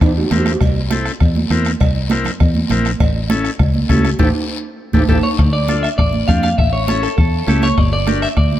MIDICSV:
0, 0, Header, 1, 6, 480
1, 0, Start_track
1, 0, Tempo, 298507
1, 982, Time_signature, 4, 2, 24, 8
1, 13824, End_track
2, 0, Start_track
2, 0, Title_t, "Clean electric guitar"
2, 0, Program_c, 0, 27
2, 8179, Note_on_c, 0, 69, 76
2, 8403, Note_off_c, 0, 69, 0
2, 8415, Note_on_c, 0, 73, 90
2, 8495, Note_off_c, 0, 73, 0
2, 8647, Note_on_c, 0, 74, 83
2, 8871, Note_off_c, 0, 74, 0
2, 8891, Note_on_c, 0, 74, 91
2, 9342, Note_off_c, 0, 74, 0
2, 9373, Note_on_c, 0, 76, 87
2, 9453, Note_off_c, 0, 76, 0
2, 9613, Note_on_c, 0, 74, 85
2, 10085, Note_off_c, 0, 74, 0
2, 10092, Note_on_c, 0, 77, 89
2, 10324, Note_off_c, 0, 77, 0
2, 10343, Note_on_c, 0, 77, 90
2, 10575, Note_off_c, 0, 77, 0
2, 10582, Note_on_c, 0, 76, 98
2, 10809, Note_off_c, 0, 76, 0
2, 10816, Note_on_c, 0, 73, 86
2, 11037, Note_off_c, 0, 73, 0
2, 11057, Note_on_c, 0, 73, 84
2, 11282, Note_off_c, 0, 73, 0
2, 11298, Note_on_c, 0, 69, 84
2, 11523, Note_off_c, 0, 69, 0
2, 11541, Note_on_c, 0, 69, 78
2, 11988, Note_off_c, 0, 69, 0
2, 12027, Note_on_c, 0, 69, 74
2, 12272, Note_off_c, 0, 69, 0
2, 12272, Note_on_c, 0, 73, 82
2, 12504, Note_off_c, 0, 73, 0
2, 12504, Note_on_c, 0, 74, 86
2, 12729, Note_off_c, 0, 74, 0
2, 12748, Note_on_c, 0, 74, 89
2, 13192, Note_off_c, 0, 74, 0
2, 13226, Note_on_c, 0, 76, 89
2, 13306, Note_off_c, 0, 76, 0
2, 13464, Note_on_c, 0, 74, 80
2, 13824, Note_off_c, 0, 74, 0
2, 13824, End_track
3, 0, Start_track
3, 0, Title_t, "Transistor combo organ"
3, 0, Program_c, 1, 18
3, 503, Note_on_c, 1, 60, 73
3, 511, Note_on_c, 1, 64, 74
3, 516, Note_on_c, 1, 70, 79
3, 839, Note_off_c, 1, 60, 0
3, 843, Note_off_c, 1, 64, 0
3, 845, Note_off_c, 1, 70, 0
3, 1466, Note_on_c, 1, 60, 74
3, 1472, Note_on_c, 1, 64, 66
3, 1480, Note_on_c, 1, 69, 86
3, 1800, Note_off_c, 1, 60, 0
3, 1803, Note_off_c, 1, 64, 0
3, 1807, Note_off_c, 1, 69, 0
3, 2422, Note_on_c, 1, 60, 82
3, 2427, Note_on_c, 1, 64, 71
3, 2437, Note_on_c, 1, 70, 87
3, 2758, Note_off_c, 1, 60, 0
3, 2760, Note_off_c, 1, 64, 0
3, 2765, Note_off_c, 1, 70, 0
3, 3392, Note_on_c, 1, 60, 80
3, 3393, Note_on_c, 1, 64, 69
3, 3403, Note_on_c, 1, 70, 84
3, 3723, Note_off_c, 1, 60, 0
3, 3723, Note_off_c, 1, 64, 0
3, 3728, Note_off_c, 1, 70, 0
3, 4353, Note_on_c, 1, 60, 81
3, 4364, Note_on_c, 1, 64, 73
3, 4368, Note_on_c, 1, 70, 92
3, 4683, Note_off_c, 1, 60, 0
3, 4688, Note_off_c, 1, 64, 0
3, 4690, Note_off_c, 1, 70, 0
3, 5305, Note_on_c, 1, 61, 80
3, 5317, Note_on_c, 1, 69, 83
3, 5319, Note_on_c, 1, 64, 74
3, 5639, Note_off_c, 1, 61, 0
3, 5644, Note_off_c, 1, 69, 0
3, 5645, Note_off_c, 1, 64, 0
3, 6256, Note_on_c, 1, 61, 75
3, 6266, Note_on_c, 1, 64, 71
3, 6275, Note_on_c, 1, 69, 86
3, 6594, Note_off_c, 1, 61, 0
3, 6599, Note_off_c, 1, 64, 0
3, 6603, Note_off_c, 1, 69, 0
3, 6741, Note_on_c, 1, 64, 94
3, 6743, Note_on_c, 1, 67, 94
3, 6744, Note_on_c, 1, 69, 97
3, 6894, Note_off_c, 1, 64, 0
3, 6895, Note_off_c, 1, 67, 0
3, 6896, Note_off_c, 1, 69, 0
3, 7938, Note_on_c, 1, 67, 90
3, 7943, Note_on_c, 1, 69, 86
3, 7946, Note_on_c, 1, 64, 92
3, 8093, Note_off_c, 1, 67, 0
3, 8095, Note_off_c, 1, 69, 0
3, 8097, Note_off_c, 1, 64, 0
3, 8183, Note_on_c, 1, 69, 91
3, 8186, Note_on_c, 1, 67, 84
3, 8188, Note_on_c, 1, 64, 90
3, 8335, Note_off_c, 1, 69, 0
3, 8337, Note_off_c, 1, 67, 0
3, 8338, Note_off_c, 1, 64, 0
3, 9145, Note_on_c, 1, 62, 64
3, 9151, Note_on_c, 1, 65, 56
3, 9156, Note_on_c, 1, 69, 71
3, 9479, Note_off_c, 1, 62, 0
3, 9482, Note_off_c, 1, 65, 0
3, 9485, Note_off_c, 1, 69, 0
3, 10109, Note_on_c, 1, 62, 66
3, 10114, Note_on_c, 1, 65, 57
3, 10121, Note_on_c, 1, 67, 69
3, 10441, Note_off_c, 1, 62, 0
3, 10443, Note_off_c, 1, 65, 0
3, 10447, Note_off_c, 1, 67, 0
3, 11072, Note_on_c, 1, 61, 65
3, 11081, Note_on_c, 1, 64, 58
3, 11082, Note_on_c, 1, 69, 71
3, 11403, Note_off_c, 1, 61, 0
3, 11407, Note_off_c, 1, 64, 0
3, 11408, Note_off_c, 1, 69, 0
3, 12014, Note_on_c, 1, 61, 61
3, 12019, Note_on_c, 1, 64, 61
3, 12032, Note_on_c, 1, 67, 78
3, 12354, Note_off_c, 1, 61, 0
3, 12357, Note_off_c, 1, 64, 0
3, 12363, Note_off_c, 1, 67, 0
3, 12980, Note_on_c, 1, 62, 68
3, 12984, Note_on_c, 1, 67, 58
3, 12991, Note_on_c, 1, 70, 73
3, 13318, Note_off_c, 1, 62, 0
3, 13320, Note_off_c, 1, 67, 0
3, 13323, Note_off_c, 1, 70, 0
3, 13824, End_track
4, 0, Start_track
4, 0, Title_t, "Fingered electric bass"
4, 0, Program_c, 2, 33
4, 22, Note_on_c, 2, 40, 95
4, 406, Note_off_c, 2, 40, 0
4, 499, Note_on_c, 2, 40, 83
4, 884, Note_off_c, 2, 40, 0
4, 982, Note_on_c, 2, 36, 88
4, 1750, Note_off_c, 2, 36, 0
4, 1945, Note_on_c, 2, 40, 98
4, 2327, Note_off_c, 2, 40, 0
4, 2414, Note_on_c, 2, 40, 80
4, 2800, Note_off_c, 2, 40, 0
4, 2908, Note_on_c, 2, 36, 86
4, 3673, Note_off_c, 2, 36, 0
4, 3871, Note_on_c, 2, 40, 92
4, 4251, Note_off_c, 2, 40, 0
4, 4344, Note_on_c, 2, 34, 89
4, 4727, Note_off_c, 2, 34, 0
4, 4828, Note_on_c, 2, 33, 88
4, 5593, Note_off_c, 2, 33, 0
4, 5784, Note_on_c, 2, 37, 99
4, 6166, Note_off_c, 2, 37, 0
4, 6263, Note_on_c, 2, 37, 84
4, 6646, Note_off_c, 2, 37, 0
4, 6749, Note_on_c, 2, 33, 90
4, 6923, Note_off_c, 2, 33, 0
4, 7942, Note_on_c, 2, 33, 86
4, 8119, Note_off_c, 2, 33, 0
4, 8184, Note_on_c, 2, 33, 94
4, 8360, Note_off_c, 2, 33, 0
4, 8663, Note_on_c, 2, 38, 92
4, 9430, Note_off_c, 2, 38, 0
4, 9624, Note_on_c, 2, 33, 83
4, 10007, Note_off_c, 2, 33, 0
4, 10108, Note_on_c, 2, 41, 81
4, 10489, Note_off_c, 2, 41, 0
4, 10586, Note_on_c, 2, 33, 96
4, 11352, Note_off_c, 2, 33, 0
4, 11547, Note_on_c, 2, 40, 80
4, 11929, Note_off_c, 2, 40, 0
4, 12020, Note_on_c, 2, 37, 85
4, 12405, Note_off_c, 2, 37, 0
4, 12506, Note_on_c, 2, 31, 94
4, 13273, Note_off_c, 2, 31, 0
4, 13455, Note_on_c, 2, 38, 79
4, 13824, Note_off_c, 2, 38, 0
4, 13824, End_track
5, 0, Start_track
5, 0, Title_t, "Two-headed folk drums"
5, 21, Note_on_c, 9, 36, 84
5, 21, Note_on_c, 9, 37, 79
5, 182, Note_off_c, 9, 36, 0
5, 182, Note_off_c, 9, 37, 0
5, 499, Note_on_c, 9, 37, 74
5, 660, Note_off_c, 9, 37, 0
5, 737, Note_on_c, 9, 37, 87
5, 898, Note_off_c, 9, 37, 0
5, 974, Note_on_c, 9, 37, 84
5, 981, Note_on_c, 9, 36, 80
5, 1135, Note_off_c, 9, 37, 0
5, 1142, Note_off_c, 9, 36, 0
5, 1457, Note_on_c, 9, 37, 82
5, 1617, Note_off_c, 9, 37, 0
5, 1696, Note_on_c, 9, 37, 83
5, 1857, Note_off_c, 9, 37, 0
5, 1937, Note_on_c, 9, 37, 84
5, 1943, Note_on_c, 9, 36, 79
5, 2097, Note_off_c, 9, 37, 0
5, 2103, Note_off_c, 9, 36, 0
5, 2422, Note_on_c, 9, 37, 78
5, 2583, Note_off_c, 9, 37, 0
5, 2673, Note_on_c, 9, 37, 83
5, 2833, Note_off_c, 9, 37, 0
5, 2908, Note_on_c, 9, 36, 74
5, 2913, Note_on_c, 9, 37, 79
5, 3069, Note_off_c, 9, 36, 0
5, 3074, Note_off_c, 9, 37, 0
5, 3394, Note_on_c, 9, 37, 85
5, 3555, Note_off_c, 9, 37, 0
5, 3633, Note_on_c, 9, 37, 80
5, 3794, Note_off_c, 9, 37, 0
5, 3864, Note_on_c, 9, 37, 87
5, 3868, Note_on_c, 9, 36, 84
5, 4024, Note_off_c, 9, 37, 0
5, 4029, Note_off_c, 9, 36, 0
5, 4354, Note_on_c, 9, 37, 79
5, 4514, Note_off_c, 9, 37, 0
5, 4597, Note_on_c, 9, 37, 81
5, 4758, Note_off_c, 9, 37, 0
5, 4829, Note_on_c, 9, 36, 77
5, 4831, Note_on_c, 9, 37, 84
5, 4990, Note_off_c, 9, 36, 0
5, 4992, Note_off_c, 9, 37, 0
5, 5304, Note_on_c, 9, 37, 82
5, 5464, Note_off_c, 9, 37, 0
5, 5539, Note_on_c, 9, 37, 76
5, 5700, Note_off_c, 9, 37, 0
5, 5779, Note_on_c, 9, 37, 87
5, 5784, Note_on_c, 9, 36, 83
5, 5940, Note_off_c, 9, 37, 0
5, 5944, Note_off_c, 9, 36, 0
5, 6261, Note_on_c, 9, 37, 79
5, 6264, Note_on_c, 9, 36, 72
5, 6422, Note_off_c, 9, 37, 0
5, 6425, Note_off_c, 9, 36, 0
5, 6506, Note_on_c, 9, 37, 84
5, 6667, Note_off_c, 9, 37, 0
5, 6745, Note_on_c, 9, 36, 92
5, 6906, Note_off_c, 9, 36, 0
5, 7942, Note_on_c, 9, 36, 81
5, 8103, Note_off_c, 9, 36, 0
5, 8182, Note_on_c, 9, 36, 93
5, 8343, Note_off_c, 9, 36, 0
5, 8665, Note_on_c, 9, 36, 76
5, 8668, Note_on_c, 9, 37, 79
5, 8825, Note_off_c, 9, 36, 0
5, 8829, Note_off_c, 9, 37, 0
5, 9146, Note_on_c, 9, 37, 81
5, 9307, Note_off_c, 9, 37, 0
5, 9397, Note_on_c, 9, 37, 79
5, 9557, Note_off_c, 9, 37, 0
5, 9626, Note_on_c, 9, 36, 86
5, 9633, Note_on_c, 9, 37, 86
5, 9787, Note_off_c, 9, 36, 0
5, 9794, Note_off_c, 9, 37, 0
5, 10107, Note_on_c, 9, 36, 72
5, 10112, Note_on_c, 9, 37, 76
5, 10268, Note_off_c, 9, 36, 0
5, 10273, Note_off_c, 9, 37, 0
5, 10350, Note_on_c, 9, 37, 76
5, 10511, Note_off_c, 9, 37, 0
5, 10588, Note_on_c, 9, 36, 79
5, 10597, Note_on_c, 9, 37, 74
5, 10749, Note_off_c, 9, 36, 0
5, 10758, Note_off_c, 9, 37, 0
5, 11072, Note_on_c, 9, 37, 82
5, 11233, Note_off_c, 9, 37, 0
5, 11307, Note_on_c, 9, 37, 78
5, 11468, Note_off_c, 9, 37, 0
5, 11542, Note_on_c, 9, 37, 80
5, 11547, Note_on_c, 9, 36, 88
5, 11703, Note_off_c, 9, 37, 0
5, 11708, Note_off_c, 9, 36, 0
5, 12030, Note_on_c, 9, 37, 78
5, 12190, Note_off_c, 9, 37, 0
5, 12266, Note_on_c, 9, 37, 82
5, 12427, Note_off_c, 9, 37, 0
5, 12504, Note_on_c, 9, 37, 78
5, 12505, Note_on_c, 9, 36, 79
5, 12665, Note_off_c, 9, 37, 0
5, 12666, Note_off_c, 9, 36, 0
5, 12974, Note_on_c, 9, 37, 82
5, 13134, Note_off_c, 9, 37, 0
5, 13222, Note_on_c, 9, 37, 80
5, 13382, Note_off_c, 9, 37, 0
5, 13455, Note_on_c, 9, 37, 86
5, 13460, Note_on_c, 9, 36, 85
5, 13616, Note_off_c, 9, 37, 0
5, 13620, Note_off_c, 9, 36, 0
5, 13824, End_track
6, 0, Start_track
6, 0, Title_t, "Drums"
6, 20, Note_on_c, 9, 74, 68
6, 24, Note_on_c, 9, 63, 33
6, 35, Note_on_c, 9, 56, 72
6, 35, Note_on_c, 9, 65, 70
6, 181, Note_off_c, 9, 74, 0
6, 185, Note_off_c, 9, 63, 0
6, 195, Note_off_c, 9, 56, 0
6, 195, Note_off_c, 9, 65, 0
6, 276, Note_on_c, 9, 66, 74
6, 437, Note_off_c, 9, 66, 0
6, 500, Note_on_c, 9, 73, 73
6, 502, Note_on_c, 9, 63, 76
6, 502, Note_on_c, 9, 64, 78
6, 504, Note_on_c, 9, 66, 82
6, 661, Note_off_c, 9, 73, 0
6, 662, Note_off_c, 9, 63, 0
6, 662, Note_off_c, 9, 64, 0
6, 664, Note_off_c, 9, 66, 0
6, 736, Note_on_c, 9, 73, 67
6, 739, Note_on_c, 9, 63, 62
6, 751, Note_on_c, 9, 66, 81
6, 897, Note_off_c, 9, 73, 0
6, 900, Note_off_c, 9, 63, 0
6, 912, Note_off_c, 9, 66, 0
6, 975, Note_on_c, 9, 74, 69
6, 991, Note_on_c, 9, 56, 108
6, 1136, Note_off_c, 9, 74, 0
6, 1151, Note_off_c, 9, 56, 0
6, 1223, Note_on_c, 9, 63, 32
6, 1384, Note_off_c, 9, 63, 0
6, 1460, Note_on_c, 9, 63, 92
6, 1462, Note_on_c, 9, 73, 75
6, 1620, Note_off_c, 9, 63, 0
6, 1622, Note_off_c, 9, 73, 0
6, 1702, Note_on_c, 9, 73, 60
6, 1862, Note_off_c, 9, 73, 0
6, 1938, Note_on_c, 9, 74, 68
6, 1946, Note_on_c, 9, 63, 34
6, 1954, Note_on_c, 9, 56, 74
6, 2098, Note_off_c, 9, 74, 0
6, 2107, Note_off_c, 9, 63, 0
6, 2115, Note_off_c, 9, 56, 0
6, 2184, Note_on_c, 9, 63, 68
6, 2345, Note_off_c, 9, 63, 0
6, 2417, Note_on_c, 9, 73, 72
6, 2428, Note_on_c, 9, 63, 77
6, 2578, Note_off_c, 9, 73, 0
6, 2589, Note_off_c, 9, 63, 0
6, 2650, Note_on_c, 9, 73, 70
6, 2811, Note_off_c, 9, 73, 0
6, 2898, Note_on_c, 9, 74, 63
6, 2904, Note_on_c, 9, 56, 104
6, 3059, Note_off_c, 9, 74, 0
6, 3065, Note_off_c, 9, 56, 0
6, 3140, Note_on_c, 9, 63, 31
6, 3300, Note_off_c, 9, 63, 0
6, 3372, Note_on_c, 9, 63, 96
6, 3384, Note_on_c, 9, 73, 66
6, 3533, Note_off_c, 9, 63, 0
6, 3544, Note_off_c, 9, 73, 0
6, 3610, Note_on_c, 9, 64, 68
6, 3623, Note_on_c, 9, 73, 70
6, 3771, Note_off_c, 9, 64, 0
6, 3784, Note_off_c, 9, 73, 0
6, 3853, Note_on_c, 9, 63, 32
6, 3864, Note_on_c, 9, 56, 70
6, 3869, Note_on_c, 9, 74, 68
6, 4014, Note_off_c, 9, 63, 0
6, 4025, Note_off_c, 9, 56, 0
6, 4030, Note_off_c, 9, 74, 0
6, 4096, Note_on_c, 9, 63, 68
6, 4257, Note_off_c, 9, 63, 0
6, 4335, Note_on_c, 9, 63, 76
6, 4335, Note_on_c, 9, 64, 80
6, 4342, Note_on_c, 9, 73, 74
6, 4496, Note_off_c, 9, 63, 0
6, 4496, Note_off_c, 9, 64, 0
6, 4503, Note_off_c, 9, 73, 0
6, 4585, Note_on_c, 9, 73, 70
6, 4746, Note_off_c, 9, 73, 0
6, 4828, Note_on_c, 9, 56, 113
6, 4832, Note_on_c, 9, 74, 63
6, 4989, Note_off_c, 9, 56, 0
6, 4993, Note_off_c, 9, 74, 0
6, 5063, Note_on_c, 9, 63, 31
6, 5224, Note_off_c, 9, 63, 0
6, 5303, Note_on_c, 9, 63, 99
6, 5307, Note_on_c, 9, 73, 70
6, 5463, Note_off_c, 9, 63, 0
6, 5468, Note_off_c, 9, 73, 0
6, 5545, Note_on_c, 9, 73, 68
6, 5706, Note_off_c, 9, 73, 0
6, 5779, Note_on_c, 9, 56, 71
6, 5787, Note_on_c, 9, 74, 71
6, 5788, Note_on_c, 9, 63, 36
6, 5939, Note_off_c, 9, 56, 0
6, 5948, Note_off_c, 9, 74, 0
6, 5949, Note_off_c, 9, 63, 0
6, 6018, Note_on_c, 9, 63, 69
6, 6179, Note_off_c, 9, 63, 0
6, 6266, Note_on_c, 9, 63, 78
6, 6268, Note_on_c, 9, 73, 67
6, 6270, Note_on_c, 9, 66, 63
6, 6426, Note_off_c, 9, 63, 0
6, 6429, Note_off_c, 9, 73, 0
6, 6431, Note_off_c, 9, 66, 0
6, 6506, Note_on_c, 9, 73, 65
6, 6508, Note_on_c, 9, 63, 67
6, 6667, Note_off_c, 9, 73, 0
6, 6669, Note_off_c, 9, 63, 0
6, 6735, Note_on_c, 9, 63, 91
6, 6743, Note_on_c, 9, 65, 103
6, 6746, Note_on_c, 9, 74, 86
6, 6896, Note_off_c, 9, 63, 0
6, 6904, Note_off_c, 9, 65, 0
6, 6907, Note_off_c, 9, 74, 0
6, 7932, Note_on_c, 9, 63, 93
6, 7946, Note_on_c, 9, 74, 97
6, 7956, Note_on_c, 9, 65, 92
6, 8093, Note_off_c, 9, 63, 0
6, 8107, Note_off_c, 9, 74, 0
6, 8117, Note_off_c, 9, 65, 0
6, 8176, Note_on_c, 9, 63, 90
6, 8185, Note_on_c, 9, 74, 101
6, 8192, Note_on_c, 9, 65, 94
6, 8336, Note_off_c, 9, 63, 0
6, 8346, Note_off_c, 9, 74, 0
6, 8353, Note_off_c, 9, 65, 0
6, 8669, Note_on_c, 9, 74, 63
6, 8830, Note_off_c, 9, 74, 0
6, 8899, Note_on_c, 9, 63, 31
6, 9060, Note_off_c, 9, 63, 0
6, 9139, Note_on_c, 9, 73, 72
6, 9140, Note_on_c, 9, 63, 92
6, 9299, Note_off_c, 9, 73, 0
6, 9301, Note_off_c, 9, 63, 0
6, 9391, Note_on_c, 9, 73, 64
6, 9551, Note_off_c, 9, 73, 0
6, 9623, Note_on_c, 9, 63, 30
6, 9628, Note_on_c, 9, 74, 64
6, 9783, Note_off_c, 9, 63, 0
6, 9789, Note_off_c, 9, 74, 0
6, 9851, Note_on_c, 9, 63, 65
6, 10011, Note_off_c, 9, 63, 0
6, 10099, Note_on_c, 9, 63, 72
6, 10104, Note_on_c, 9, 73, 67
6, 10260, Note_off_c, 9, 63, 0
6, 10264, Note_off_c, 9, 73, 0
6, 10338, Note_on_c, 9, 63, 62
6, 10345, Note_on_c, 9, 73, 68
6, 10499, Note_off_c, 9, 63, 0
6, 10506, Note_off_c, 9, 73, 0
6, 10589, Note_on_c, 9, 74, 62
6, 10750, Note_off_c, 9, 74, 0
6, 10827, Note_on_c, 9, 63, 32
6, 10988, Note_off_c, 9, 63, 0
6, 11065, Note_on_c, 9, 63, 90
6, 11066, Note_on_c, 9, 73, 73
6, 11225, Note_off_c, 9, 63, 0
6, 11226, Note_off_c, 9, 73, 0
6, 11307, Note_on_c, 9, 73, 64
6, 11468, Note_off_c, 9, 73, 0
6, 11545, Note_on_c, 9, 63, 32
6, 11554, Note_on_c, 9, 74, 64
6, 11706, Note_off_c, 9, 63, 0
6, 11714, Note_off_c, 9, 74, 0
6, 12020, Note_on_c, 9, 63, 77
6, 12028, Note_on_c, 9, 73, 65
6, 12181, Note_off_c, 9, 63, 0
6, 12189, Note_off_c, 9, 73, 0
6, 12255, Note_on_c, 9, 63, 65
6, 12265, Note_on_c, 9, 73, 70
6, 12416, Note_off_c, 9, 63, 0
6, 12426, Note_off_c, 9, 73, 0
6, 12505, Note_on_c, 9, 74, 65
6, 12666, Note_off_c, 9, 74, 0
6, 12738, Note_on_c, 9, 63, 31
6, 12899, Note_off_c, 9, 63, 0
6, 12983, Note_on_c, 9, 63, 92
6, 12983, Note_on_c, 9, 73, 67
6, 13143, Note_off_c, 9, 63, 0
6, 13144, Note_off_c, 9, 73, 0
6, 13223, Note_on_c, 9, 73, 63
6, 13384, Note_off_c, 9, 73, 0
6, 13458, Note_on_c, 9, 74, 68
6, 13460, Note_on_c, 9, 63, 33
6, 13618, Note_off_c, 9, 74, 0
6, 13621, Note_off_c, 9, 63, 0
6, 13704, Note_on_c, 9, 63, 66
6, 13824, Note_off_c, 9, 63, 0
6, 13824, End_track
0, 0, End_of_file